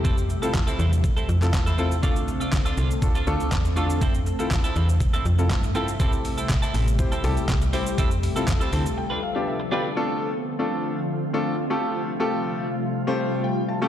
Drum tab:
HH |----------------|----------------|----------------|--o---o---o---o-|
SH |xxxxxxxxxxxxxxxx|xxxxxxxxxxxxxxxx|xxxxxxxxxxxxxxxx|xxxxxxxxxxxxxxxx|
CP |----x------xx---|----x-------x---|----x-------x---|----x-------x---|
SD |----o-------o---|----o-------o---|----o-------o---|----o-------o---|
BD |o---o---o---o---|o---o---o---o---|o---o---o---o---|o---o---o---o---|

HH |x-o-x-o---------|----------------|----------------|
SH |xxxxxxxx--------|----------------|----------------|
CP |----x-----------|----------------|----------------|
SD |----o-----------|----------------|----------------|
BD |o---o-----------|----------------|----------------|